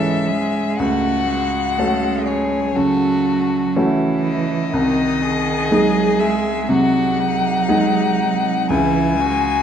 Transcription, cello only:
0.00 0.30 E3 soft
0.29 0.81 G#3 soft
0.80 1.30 A3 soft
1.30 2.73 G#3 soft
2.76 3.76 F#3 soft
3.74 4.72 E3 soft
4.72 5.72 D#3 soft
5.70 6.20 F#3 soft
6.18 6.70 G#3 soft
6.68 8.72 F#3 soft
8.70 9.19 E3 soft
9.20 9.63 G#3 soft

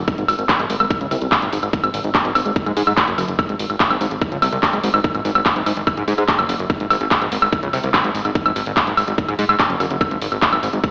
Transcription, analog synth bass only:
0.18 0.24 G#1 medium
0.28 0.34 G#1 loud
0.39 0.45 G#1 loud
0.59 0.65 G#1 medium
0.70 0.76 G#1 loud
0.80 0.86 G#1 medium
1.01 1.07 C#2 medium
1.11 1.17 C2 loud
1.22 1.27 C2 medium
1.42 1.48 G#1 medium
1.53 1.58 G#1 loud
1.63 1.69 G#1 medium
1.84 1.89 G#1 medium
1.94 2.00 G#1 loud
2.04 2.10 G#1 loud
2.25 2.31 G#1 medium
2.35 2.41 G#1 loud
2.46 2.51 G#1 medium
2.66 2.72 G#2 medium
2.77 2.82 G#2 loud
2.87 2.93 G#2 medium
3.08 3.13 F#1 medium
3.18 3.24 F#1 loud
3.28 3.34 F#1 medium
3.49 3.55 G#1 medium
3.59 3.65 G#1 loud
3.70 3.76 G#1 medium
3.90 3.96 G#1 medium
4.01 4.07 G#1 loud
4.11 4.17 G#1 medium
4.32 4.38 C#2 medium
4.42 4.48 C2 loud
4.53 4.58 C2 medium
4.73 4.79 G#1 medium
4.84 4.89 G#1 loud
4.94 5.00 G#1 loud
5.15 5.20 G#1 medium
5.25 5.31 G#1 loud
5.35 5.41 G#1 medium
5.56 5.62 G#1 medium
5.66 5.72 G#1 loud
5.77 5.82 G#1 medium
5.97 6.03 G#2 medium
6.08 6.13 G#2 loud
6.18 6.24 G#2 medium
6.39 6.44 F#1 medium
6.49 6.55 F#1 loud
6.59 6.65 F#1 medium
6.80 6.86 G#1 medium
6.90 6.96 G#1 loud
7.01 7.07 G#1 loud
7.21 7.27 G#1 medium
7.32 7.38 G#1 loud
7.42 7.48 G#1 medium
7.63 7.69 C#2 medium
7.73 7.79 C2 loud
7.84 7.89 C2 medium
8.04 8.10 G#1 medium
8.15 8.20 G#1 loud
8.25 8.31 G#1 medium
8.46 8.51 G#1 medium
8.56 8.62 G#1 loud
8.66 8.72 G#1 medium
8.87 8.93 G#1 medium
8.97 9.03 G#1 loud
9.08 9.13 G#1 medium
9.28 9.34 G#2 medium
9.39 9.44 G#2 loud
9.49 9.55 G#2 medium
9.70 9.76 F#1 medium
9.80 9.86 F#1 loud
9.91 9.96 F#1 medium
10.11 10.17 G#1 medium
10.21 10.27 G#1 loud
10.32 10.38 G#1 medium
10.53 10.58 G#1 medium
10.63 10.69 G#1 loud
10.73 10.79 G#1 medium

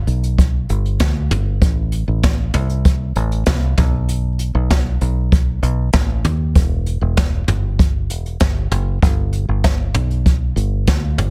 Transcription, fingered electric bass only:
0.07 0.65 B1 medium
0.70 0.98 G1 medium
1.00 1.29 D2 medium
1.31 1.60 G1 medium
1.61 2.05 A1 loud
2.08 2.51 A1 medium
2.54 3.12 C2 medium
3.16 3.45 A1 medium
3.47 3.76 C2 medium
3.78 4.51 B1 medium
4.55 4.98 B1 medium
5.01 5.59 B1 medium
5.63 5.92 B1 medium
5.93 6.23 A1 medium
6.24 6.53 D#2 medium
6.55 6.99 E1 medium
7.01 7.45 E1 medium
7.48 8.10 G1 medium
8.10 8.39 E1 medium
8.41 8.70 G1 medium
8.71 9.00 F#1 medium
9.02 9.46 G1 loud
9.49 9.92 G1 medium
9.94 10.53 B1 medium
10.56 10.85 G1 medium
10.88 11.16 D2 medium
11.18 11.30 G1 medium

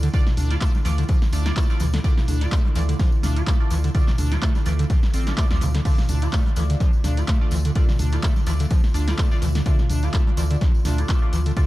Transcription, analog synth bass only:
0.37 0.56 D2 loud
0.85 1.04 D2 medium
1.33 1.52 D2 loud
1.80 1.99 D2 medium
2.28 2.47 D2 loud
2.76 2.95 D2 medium
3.23 3.42 D2 loud
3.71 3.90 D2 medium
4.18 4.37 D2 loud
4.66 4.85 D2 medium
5.14 5.33 A1 medium
5.61 5.80 D2 medium
6.09 6.28 D2 loud
6.56 6.75 D2 medium
7.04 7.23 D2 loud
7.52 7.71 D2 medium
7.99 8.18 D2 loud
8.47 8.66 D2 medium
8.94 9.14 D2 loud
9.42 9.61 D2 medium
9.90 10.09 D2 loud
10.37 10.56 D2 medium
10.85 11.04 D2 loud
11.33 11.52 D2 medium

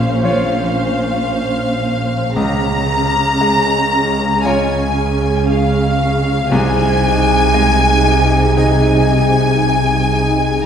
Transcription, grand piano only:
0.00 2.32 A#2 medium
0.00 0.85 A#3 soft
0.23 2.32 F4 soft
0.23 2.33 C#5 medium
2.36 6.47 C#2 medium
3.41 5.06 G#3 soft
4.45 6.47 F4 soft
4.45 6.47 C#5 medium
6.52 10.63 C2 medium
7.54 9.20 G#3 medium
8.57 10.62 D#4 medium
8.57 10.62 D#5 medium

